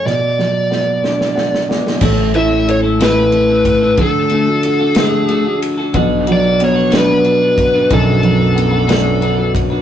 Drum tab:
CC |------------|x-----------|------------|------------|
RD |------------|--x-x-x-x-x-|x-x-x-x-x-x-|x-x-x-x-x-x-|
SD |o-o-o-oooooo|------o-----|------o-----|------o-----|
BD |------------|o---------o-|o-----------|o---------o-|

CC |------------|
RD |x-x-x-x-x-x-|
SD |------o-----|
BD |o---------o-|